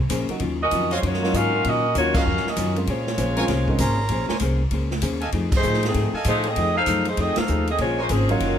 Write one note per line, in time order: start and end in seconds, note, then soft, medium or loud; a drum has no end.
0.10 0.28 A#1 medium
0.10 0.30 A#3 medium
0.10 0.30 C#4 medium
0.10 0.31 G#4 medium
0.10 0.31 C5 medium
0.10 kick soft
0.10 hi-hat pedal medium
0.10 ride medium
0.29 0.40 F#3 soft
0.29 0.40 A#3 soft
0.29 0.40 C#4 soft
0.29 0.40 D#4 soft
0.29 0.40 F#4 medium
0.29 muted upright bass stroke soft
0.29 ride soft
0.40 0.71 D#2 medium
0.40 0.61 D#3 medium
0.40 0.61 F#3 medium
0.40 0.61 C#4 medium
0.40 0.62 F4 medium
0.40 kick soft
0.40 ride medium
0.63 0.90 C#4 medium
0.63 0.90 F#4 medium
0.63 0.90 A#4 medium
0.63 0.90 D#5 loud
0.71 1.01 F2 medium
0.71 0.92 D#3 medium
0.71 0.92 F#3 medium
0.71 0.92 C#4 medium
0.71 0.93 F4 medium
0.71 kick soft
0.71 hi-hat pedal medium
0.71 ride medium
0.91 1.04 G#3 medium
0.91 1.03 C#4 medium
0.91 1.04 F4 medium
0.91 0.99 F#4 medium
0.91 1.04 C5 medium
0.91 0.99 C#5 medium
0.91 0.99 D#5 medium
0.91 0.99 F5 medium
0.91 ride soft
1.02 1.32 F#2 medium
1.02 1.23 D#3 soft
1.02 1.23 F#3 soft
1.02 1.34 A#3 medium
1.02 1.23 C#4 soft
1.02 1.24 F4 soft
1.02 1.35 F4 medium
1.02 1.35 F#4 medium
1.02 1.35 C#5 medium
1.02 kick soft
1.02 ride medium
1.14 snare soft
1.22 1.51 F#3 medium
1.22 1.51 A#3 medium
1.22 1.51 C#4 medium
1.22 1.52 D#4 medium
1.22 1.52 F4 medium
1.22 snare soft
1.33 1.63 G#2 medium
1.33 1.53 D#3 medium
1.33 1.54 F#3 medium
1.33 1.54 C#4 medium
1.33 1.65 C#4 medium
1.33 1.54 F4 medium
1.33 1.65 F#4 medium
1.33 1.65 A#4 loud
1.33 1.65 F5 loud
1.33 kick soft
1.33 hi-hat pedal medium
1.33 ride medium
1.54 1.63 F#3 soft
1.54 1.64 A#3 soft
1.54 1.64 C#4 soft
1.54 1.64 D#4 soft
1.54 1.64 F4 medium
1.64 1.94 A#2 medium
1.64 1.84 D#3 soft
1.64 1.85 F#3 medium
1.64 1.85 C#4 soft
1.64 1.96 C#4 medium
1.64 1.86 F4 medium
1.64 1.96 F#4 medium
1.64 1.96 A#4 medium
1.64 1.96 D#5 loud
1.64 kick soft
1.64 ride medium
1.95 2.25 D#2 medium
1.95 2.16 D#3 medium
1.95 2.16 F#3 medium
1.95 2.14 A#3 medium
1.95 2.16 C#4 medium
1.95 2.17 F4 medium
1.95 2.14 F4 medium
1.95 2.14 F#4 medium
1.95 2.14 C#5 loud
1.95 kick soft
1.95 hi-hat pedal soft
1.95 ride medium
2.14 2.25 F#3 medium
2.14 2.25 A#3 medium
2.14 2.25 C#4 medium
2.14 2.46 C#4 medium
2.14 2.25 D#4 medium
2.14 2.25 F4 medium
2.14 2.22 F#4 medium
2.14 2.46 F#4 medium
2.14 2.46 A#4 medium
2.14 2.22 C#5 medium
2.14 2.22 D#5 medium
2.14 2.22 F5 loud
2.14 2.46 F5 loud
2.14 kick medium
2.14 crash medium
2.26 2.44 F2 medium
2.26 2.46 D#3 soft
2.26 2.47 F#3 soft
2.26 2.47 C#4 medium
2.26 2.47 F4 medium
2.37 snare soft
2.45 2.77 C#4 medium
2.45 2.77 F#4 medium
2.45 2.77 A#4 medium
2.45 2.77 D#5 medium
2.45 muted upright bass stroke soft
2.45 snare soft
2.57 2.86 F#2 medium
2.57 2.77 D#3 medium
2.57 2.78 F#3 medium
2.57 2.78 C#4 medium
2.57 2.78 F4 medium
2.57 kick soft
2.57 hi-hat pedal medium
2.57 ride medium
2.76 2.86 G#3 medium
2.76 2.86 A#3 soft
2.76 2.86 C4 soft
2.76 2.87 C#4 soft
2.76 2.87 F4 medium
2.76 ride soft
2.87 3.17 A#2 medium
2.87 4.07 G#3 medium
2.87 3.08 A#3 soft
2.87 3.08 C#4 soft
2.87 4.08 F4 medium
2.87 3.09 G#4 soft
2.87 3.09 C5 medium
2.87 4.08 C5 medium
2.87 4.07 C#5 medium
2.87 kick soft
2.87 ride medium
3.07 snare soft
3.18 3.48 A#1 medium
3.18 3.38 A#3 medium
3.18 3.38 C#4 medium
3.18 3.39 G#4 medium
3.18 3.39 C5 medium
3.18 kick soft
3.18 hi-hat pedal medium
3.18 ride medium
3.36 3.47 G#3 medium
3.36 3.47 A#3 medium
3.36 3.47 C4 medium
3.36 3.48 C#4 medium
3.36 3.48 F4 medium
3.36 3.44 A#4 medium
3.36 3.45 C5 medium
3.36 3.45 C#5 medium
3.36 3.45 G#5 medium
3.36 ride soft
3.48 3.78 C2 medium
3.48 3.69 A#3 medium
3.48 3.69 C#4 medium
3.48 3.70 G#4 medium
3.48 3.70 C5 medium
3.48 kick soft
3.48 snare soft
3.48 ride medium
3.68 3.78 G#3 medium
3.68 3.79 A#3 medium
3.68 3.79 C4 medium
3.68 3.79 C#4 medium
3.68 3.79 D#4 medium
3.68 kick medium
3.79 4.09 G#1 medium
3.79 4.00 A#3 medium
3.79 4.25 C#4 medium
3.79 4.00 C#4 medium
3.79 4.00 G#4 medium
3.79 4.25 A#4 medium
3.79 4.01 C5 medium
3.79 4.25 A#5 medium
3.79 4.25 C6 medium
3.79 kick soft
3.79 hi-hat pedal medium
3.79 ride medium
4.09 4.28 A#1 medium
4.09 4.31 A#3 medium
4.09 4.31 C#4 medium
4.09 4.31 G#4 medium
4.09 4.32 C5 medium
4.09 kick soft
4.09 ride medium
4.29 4.37 A#4 medium
4.29 4.37 C5 medium
4.29 4.37 C#5 medium
4.29 4.37 G#5 medium
4.29 muted upright bass stroke soft
4.29 snare medium
4.40 4.71 C2 medium
4.40 4.61 A#3 medium
4.40 4.62 C#4 medium
4.40 4.62 G#4 medium
4.40 4.62 C5 medium
4.40 kick soft
4.40 hi-hat pedal medium
4.40 ride medium
4.71 5.01 C#2 medium
4.71 4.92 A#3 medium
4.71 4.93 C#4 soft
4.71 4.93 G#4 soft
4.71 4.93 C5 soft
4.71 kick soft
4.71 ride medium
4.91 snare soft
5.02 5.32 D#2 medium
5.02 5.23 A#3 medium
5.02 5.23 C#4 medium
5.02 5.23 G#4 medium
5.02 5.23 C5 medium
5.02 kick soft
5.02 hi-hat pedal medium
5.02 ride medium
5.21 5.29 A4 medium
5.21 5.29 D#5 medium
5.21 5.29 F5 medium
5.21 5.29 G#5 medium
5.21 ride soft
5.32 5.63 F2 medium
5.32 5.53 F3 medium
5.32 5.54 A3 soft
5.32 5.54 D#4 medium
5.32 5.54 G#4 medium
5.32 kick soft
5.32 ride medium
5.52 5.83 D#4 medium
5.52 5.83 G#4 medium
5.52 kick medium
5.52 crash medium
5.56 5.83 A3 medium
5.56 5.83 C5 loud
5.63 5.94 A2 medium
5.63 5.84 F3 medium
5.63 5.84 A3 medium
5.63 5.84 D#4 medium
5.63 5.84 G#4 medium
5.63 hi-hat pedal medium
5.73 snare soft
5.83 6.14 D#3 medium
5.83 snare soft
5.83 ride medium
5.87 6.14 A3 medium
5.87 6.14 C4 medium
5.87 6.14 G#4 medium
5.94 6.12 G#2 medium
5.94 6.15 F3 soft
5.94 6.15 A3 soft
5.94 6.16 D#4 soft
5.94 6.16 G#4 soft
5.94 kick soft
5.94 ride medium
6.13 6.54 A4 medium
6.13 6.54 D#5 medium
6.13 6.54 F5 medium
6.13 6.54 G#5 medium
6.13 muted upright bass stroke soft
6.24 6.55 A2 medium
6.24 6.47 F3 medium
6.24 6.45 A3 medium
6.24 6.47 A3 medium
6.24 6.45 D#4 medium
6.24 6.47 D#4 medium
6.24 6.44 G#4 medium
6.24 6.45 C5 medium
6.24 kick soft
6.24 hi-hat pedal medium
6.24 ride medium
6.29 6.48 G#4 medium
6.44 6.77 C4 medium
6.44 6.76 A4 medium
6.44 ride soft
6.48 6.77 G#4 medium
6.48 6.77 D#5 medium
6.56 6.86 F2 medium
6.56 6.77 F3 soft
6.56 6.78 A3 soft
6.56 6.78 D#4 medium
6.56 6.78 G#4 medium
6.56 kick soft
6.56 ride medium
6.75 7.05 D#4 medium
6.75 6.83 A4 medium
6.75 7.05 A4 medium
6.75 7.05 C5 medium
6.75 6.83 D#5 medium
6.75 6.83 F5 medium
6.75 7.05 F5 loud
6.75 6.83 G#5 medium
6.86 7.17 F#2 medium
6.86 7.08 F3 medium
6.86 7.08 A3 medium
6.86 7.08 D#4 medium
6.86 7.08 G#4 medium
6.86 kick soft
6.86 hi-hat pedal medium
6.86 ride medium
7.05 7.19 A3 medium
7.05 7.19 D#4 medium
7.05 7.19 G#4 medium
7.05 7.19 C5 medium
7.05 ride soft
7.17 7.35 F2 medium
7.17 7.38 F3 soft
7.17 7.39 A3 soft
7.17 7.38 C4 medium
7.17 7.39 D#4 medium
7.17 7.38 G#4 medium
7.17 7.39 G#4 soft
7.17 7.37 A4 medium
7.17 7.38 D#5 loud
7.17 kick soft
7.17 ride medium
7.36 7.68 D#4 medium
7.36 7.68 A4 medium
7.36 7.68 C5 medium
7.36 7.68 F5 medium
7.36 muted upright bass stroke soft
7.36 snare medium
7.36 ride medium
7.47 7.79 D#2 medium
7.47 7.69 F3 medium
7.47 7.69 A3 medium
7.47 7.69 D#4 medium
7.47 7.69 G#4 medium
7.47 hi-hat pedal medium
7.67 7.79 C4 medium
7.67 7.79 G#4 medium
7.67 7.79 A4 medium
7.67 7.79 D#5 medium
7.67 ride soft
7.78 8.09 A#1 medium
7.78 7.98 G#3 medium
7.78 8.00 A#3 medium
7.78 7.98 C4 medium
7.78 8.00 C#4 soft
7.78 7.98 F4 medium
7.78 8.00 G#4 medium
7.78 8.01 C5 medium
7.78 7.98 C#5 medium
7.78 kick soft
7.78 ride medium
7.98 8.10 G#3 medium
7.98 8.10 C#4 medium
7.98 8.10 F4 medium
7.98 8.06 A#4 medium
7.98 8.06 C5 medium
7.98 8.10 C5 medium
7.98 8.06 C#5 medium
7.98 8.06 G#5 medium
8.09 8.40 G#1 medium
8.09 8.30 F3 medium
8.09 8.31 A#3 medium
8.09 8.30 C4 medium
8.09 8.31 C#4 medium
8.09 8.30 C#4 medium
8.09 8.30 G#4 medium
8.09 8.31 G#4 medium
8.09 8.31 C5 medium
8.09 kick soft
8.09 hi-hat pedal medium
8.09 ride medium
8.29 8.59 F#3 medium
8.29 8.59 A#3 medium
8.29 8.59 C#4 medium
8.29 8.59 D#4 medium
8.29 8.59 F4 medium
8.29 8.59 F#4 medium
8.29 8.59 C#5 medium
8.29 8.59 F5 medium
8.29 ride soft
8.40 8.59 F#1 medium
8.40 8.59 D#3 soft
8.40 8.59 F#3 soft
8.40 8.59 C#4 soft
8.40 8.59 F4 soft
8.40 kick soft
8.40 ride medium